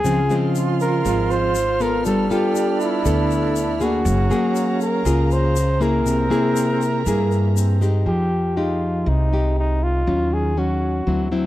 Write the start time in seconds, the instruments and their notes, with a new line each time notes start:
Already playing: flugelhorn G#4
0.04 upright bass C#2, nylon-string guitar C#3 F3 G#3 C4, string section C4 C6 F6, alto flute F4, shaker
0.30 nylon-string guitar F3 G#3 C4, shaker
0.55 shaker
0.80 flugelhorn A#4, shaker
1.05 upright bass G#1, nylon-string guitar G#2 F3 G#3 C4, shaker
1.31 flugelhorn C5, shaker
1.55 shaker
1.80 nylon-string guitar B3 F4 A4, flugelhorn A#4, shaker
2.05 upright bass G1, nylon-string guitar G3, alto flute D4, string section A4 B5, flugelhorn A4, shaker
2.30 nylon-string guitar B3 F4 A4, flugelhorn G4, shaker
2.56 shaker
2.81 flugelhorn E4, shaker
3.05 upright bass D2, nylon-string guitar D3 B3 A4, shaker
3.31 shaker
3.56 shaker
3.80 nylon-string guitar A#3 G#4, flugelhorn F#4, shaker
4.05 upright bass F#1, nylon-string guitar F#3, alto flute C#4, string section G#4 F5 A#5, shaker
4.30 nylon-string guitar A#3 G#4, shaker
4.56 shaker
4.81 flugelhorn A#4, shaker
5.05 upright bass C#2, nylon-string guitar C#3 A#3 F4 G#4, shaker
5.31 flugelhorn C5, shaker
5.56 shaker
5.80 nylon-string guitar A#3 E4 G#4, flugelhorn A#4, shaker
6.05 upright bass C2, nylon-string guitar C3, alto flute C4, string section E5 A#5, shaker
6.30 nylon-string guitar A#3 E4 G#4, shaker
6.56 shaker
6.82 shaker
7.06 upright bass G2, nylon-string guitar G2 A#3 E4 G#4, alto flute A#3, shaker
7.31 shaker
7.56 alto flute C4, shaker
7.81 nylon-string guitar G#3 D#4 G4, shaker
8.06 upright bass F2, nylon-string guitar F3, flugelhorn G4
8.57 nylon-string guitar G#3 D#4 G4, flugelhorn F4
9.06 upright bass C2, nylon-string guitar C3, flugelhorn D#4
9.32 nylon-string guitar G#3 D#4 G4
9.59 flugelhorn D#4
9.84 flugelhorn F4
10.07 upright bass D#2, nylon-string guitar D#3 F#3 C#4 F4
10.34 flugelhorn G#4
10.57 nylon-string guitar F#3 C#4, flugelhorn F#4
11.07 upright bass D2, nylon-string guitar D3 F#3 C4 E4
11.32 nylon-string guitar F#3 C4 E4